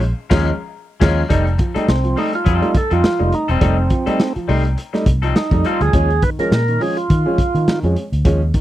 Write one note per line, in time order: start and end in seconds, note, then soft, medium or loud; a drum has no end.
0.00 0.12 A#1 medium
0.00 muted clean electric guitar stroke soft
0.00 closed hi-hat soft
0.30 0.50 D#2 loud
0.30 0.50 F3 loud
0.30 0.50 G#3 loud
0.30 0.50 C#4 loud
0.30 0.50 F4 loud
0.30 0.49 A#4 loud
0.30 kick loud
0.30 snare loud
0.30 crash medium
1.00 1.22 D#2 loud
1.00 1.21 F3 loud
1.00 1.21 G#3 loud
1.00 1.21 G#3 medium
1.00 1.21 C#4 loud
1.00 1.22 C#4 medium
1.00 1.22 F4 loud
1.00 1.22 A#4 loud
1.00 kick loud
1.00 snare loud
1.00 crash medium
1.29 1.56 F1 loud
1.29 1.51 G3 medium
1.29 1.43 G3 medium
1.29 1.43 A3 medium
1.29 1.46 C4 medium
1.29 1.45 D#4 medium
1.29 1.44 D#4 loud
1.29 1.44 A4 medium
1.29 kick loud
1.29 closed hi-hat loud
1.46 muted clean electric guitar stroke soft
1.46 closed hi-hat soft
1.58 1.73 F3 medium
1.58 muted clean electric guitar stroke soft
1.58 kick loud
1.58 closed hi-hat medium
1.75 1.86 G3 medium
1.75 1.86 G3 soft
1.75 1.86 A3 medium
1.75 1.86 C4 medium
1.75 1.87 D#4 medium
1.75 1.86 D#4 medium
1.75 1.87 A4 medium
1.75 muted fingered electric bass stroke soft
1.75 closed hi-hat medium
1.87 2.14 C2 medium
1.87 1.95 A3 soft
1.87 2.19 C4 medium
1.87 1.95 D#4 soft
1.87 muted clean electric guitar stroke soft
1.87 snare loud
2.04 2.15 F3 medium
2.04 closed hi-hat soft
2.16 2.35 G3 medium
2.16 2.30 G3 medium
2.16 2.31 A3 medium
2.16 2.32 C4 medium
2.16 2.32 D#4 medium
2.16 2.31 D#4 medium
2.16 2.33 D#4 medium
2.16 2.32 A4 medium
2.16 open hi-hat medium
2.33 2.77 F4 medium
2.33 muted clean electric guitar stroke soft
2.33 closed hi-hat medium
2.45 2.61 F2 loud
2.45 2.67 G3 medium
2.45 2.68 C4 medium
2.45 2.68 D#4 medium
2.45 2.68 A4 medium
2.45 kick medium
2.45 closed hi-hat medium
2.62 2.73 G3 medium
2.62 2.73 A3 medium
2.62 2.73 D#4 medium
2.62 closed hi-hat soft
2.75 2.93 A4 loud
2.75 muted fingered electric bass stroke soft
2.75 muted clean electric guitar stroke soft
2.75 kick loud
2.75 closed hi-hat medium
2.91 3.03 F2 medium
2.91 3.02 F3 medium
2.91 3.02 G3 medium
2.91 3.02 C4 medium
2.91 3.03 D#4 medium
2.91 3.35 F4 medium
2.91 3.03 A4 medium
2.91 closed hi-hat soft
3.03 3.17 F3 medium
3.03 muted clean electric guitar stroke soft
3.03 muted fingered electric bass stroke soft
3.03 snare loud
3.19 3.32 F1 medium
3.19 3.30 G3 medium
3.19 3.31 A3 medium
3.19 3.31 D#4 medium
3.19 muted clean electric guitar stroke soft
3.32 3.39 A3 soft
3.32 3.39 D#4 soft
3.32 3.50 D#4 medium
3.32 closed hi-hat medium
3.48 3.61 E1 medium
3.48 3.59 G3 medium
3.48 3.60 C4 medium
3.48 4.33 C4 medium
3.48 3.60 D#4 medium
3.48 3.61 A4 loud
3.48 closed hi-hat medium
3.61 3.87 F1 loud
3.61 3.83 G3 medium
3.61 3.75 G3 medium
3.61 3.75 A3 medium
3.61 3.77 C4 medium
3.61 3.77 D#4 loud
3.61 3.75 D#4 loud
3.61 3.76 A4 medium
3.61 kick loud
3.61 closed hi-hat loud
3.77 muted clean electric guitar stroke medium
3.90 4.04 F3 medium
3.90 muted clean electric guitar stroke soft
3.90 kick medium
3.90 closed hi-hat medium
4.06 4.17 G3 medium
4.06 4.18 G3 medium
4.06 4.18 A3 medium
4.06 4.19 C4 medium
4.06 4.19 D#4 medium
4.06 4.18 D#4 medium
4.06 4.19 A4 medium
4.06 muted fingered electric bass stroke soft
4.06 closed hi-hat medium
4.19 4.26 A3 soft
4.19 4.26 D#4 soft
4.19 muted clean electric guitar stroke soft
4.19 snare loud
4.35 4.46 F3 medium
4.35 muted fingered electric bass stroke soft
4.35 closed hi-hat soft
4.48 4.75 C2 loud
4.48 4.66 G3 medium
4.48 4.62 G3 medium
4.48 4.62 A3 medium
4.48 4.64 C4 medium
4.48 4.63 D#4 medium
4.48 4.62 D#4 medium
4.48 4.64 C5 medium
4.48 open hi-hat medium
4.64 muted clean electric guitar stroke medium
4.64 closed hi-hat medium
4.77 muted clean electric guitar stroke soft
4.77 closed hi-hat medium
4.93 5.04 G3 medium
4.93 5.04 A3 medium
4.93 5.04 D#4 medium
4.93 muted clean electric guitar stroke medium
4.93 snare soft
4.93 closed hi-hat soft
5.06 5.32 C2 medium
5.06 kick loud
5.06 closed hi-hat medium
5.22 5.33 F3 medium
5.22 5.34 G3 medium
5.22 5.35 C4 medium
5.22 5.36 D#4 medium
5.22 5.36 A4 medium
5.22 closed hi-hat soft
5.36 5.66 D#4 medium
5.36 muted clean electric guitar stroke soft
5.36 snare loud
5.51 5.63 F2 medium
5.51 5.62 G3 medium
5.51 5.62 A3 medium
5.51 5.62 D#4 medium
5.51 muted clean electric guitar stroke soft
5.51 kick medium
5.51 closed hi-hat soft
5.64 5.86 G3 medium
5.64 5.81 C4 medium
5.64 5.80 D#4 medium
5.64 5.82 F4 medium
5.64 5.80 A4 medium
5.64 closed hi-hat medium
5.81 5.92 D2 medium
5.81 5.91 F3 medium
5.81 6.24 G#4 loud
5.81 muted clean electric guitar stroke medium
5.81 closed hi-hat medium
5.93 6.19 D#2 loud
5.93 6.07 F3 medium
5.93 6.07 G#3 medium
5.93 6.07 C#4 loud
5.93 kick loud
5.93 closed hi-hat medium
6.10 closed hi-hat soft
6.22 6.36 D#3 soft
6.22 6.30 B4 loud
6.22 kick medium
6.22 closed hi-hat medium
6.39 6.49 F3 medium
6.39 6.49 G#3 medium
6.39 6.50 C#4 medium
6.39 6.82 A#4 loud
6.39 muted fingered electric bass stroke soft
6.39 closed hi-hat medium
6.52 6.77 A#2 medium
6.52 6.58 G#3 soft
6.52 6.58 C#4 soft
6.52 snare loud
6.68 6.78 D#3 medium
6.68 closed hi-hat soft
6.80 6.94 F3 medium
6.80 6.94 G#3 medium
6.80 6.94 C#4 medium
6.80 6.97 G#4 loud
6.80 open hi-hat medium
6.97 7.79 F4 medium
6.97 closed hi-hat medium
7.10 7.24 D#3 loud
7.10 kick loud
7.10 closed hi-hat medium
7.26 7.36 F3 medium
7.26 7.36 G#3 medium
7.26 7.36 C#4 medium
7.38 muted fingered electric bass stroke medium
7.38 kick medium
7.38 closed hi-hat medium
7.55 7.65 D#3 medium
7.55 7.66 D#3 loud
7.55 closed hi-hat soft
7.68 7.81 D#3 medium
7.68 muted fingered electric bass stroke soft
7.68 snare medium
7.83 7.95 F2 loud
7.83 7.94 F3 medium
7.83 7.94 G#3 medium
7.83 7.94 C#4 medium
7.83 closed hi-hat soft
7.96 8.03 G#3 soft
7.96 8.03 C#4 soft
7.96 closed hi-hat medium
8.12 8.24 D2 medium
8.12 closed hi-hat medium
8.25 8.51 D#2 loud
8.25 8.38 F3 medium
8.25 8.38 G#3 medium
8.25 8.39 C#4 loud
8.25 kick loud
8.25 closed hi-hat medium
8.54 8.61 D#3 medium
8.54 kick loud
8.54 closed hi-hat medium